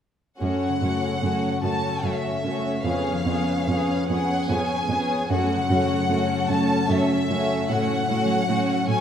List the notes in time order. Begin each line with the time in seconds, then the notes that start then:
0.40 F#2 A3 C#4 F#4 C#5 F#5
0.69 C#3
0.82 F#2 A3 C#4 F#4 C#5
0.97 A3
1.21 F#2 A3 C#4 F#4 C#5
1.51 C#5
1.62 F#2 A3 C#4 F#4 C#5 A5
1.78 A4
2.03 F#2 A3 C#4 F#4 C#5 E5
2.31 C#4
2.42 F#2 A3 C#4 F#4 C#5
2.59 A3
2.84 F2 B3 C#4 G#4 C#5 F5
3.13 F3
3.26 F2 B3 C#4 G#4 C#5
3.41 G#3
3.68 F2 B3 C#4 G#4 C#5
3.96 B4
4.08 F2 B3 C#4 G#4 C#5 F#5
4.23 G#4
4.49 F2 B3 C#4 G#4 C#5 G#5
4.75 B4
4.89 F2 B3 C#4 G#4 C#5
5.02 C#4
5.30 F#2 A3 C#4 F#4 C#5 F#5
5.57 C#3
5.70 F#2 A3 C#4 F#4 C#5
5.84 F#3
6.09 F#2 A3 C#4 F#4 C#5
6.36 A4
6.49 F#2 A3 C#4 F#4 C#5 A5
6.63 F#4
6.88 F#2 A3 C#4 F#4 C#5 E5
7.17 A4
7.29 F#2 A3 C#4 F#4 C#5
7.44 C#4
7.69 A2 A3 C#4 F#4 C#5 F#5
7.97 A3
8.09 A2 A3 C#4 F#4 C#5
8.24 F#3
8.49 A2 A3 C#4 F#4 C#5
8.77 A4
8.87 A2 A3 C#4 F#4 C#5 G#5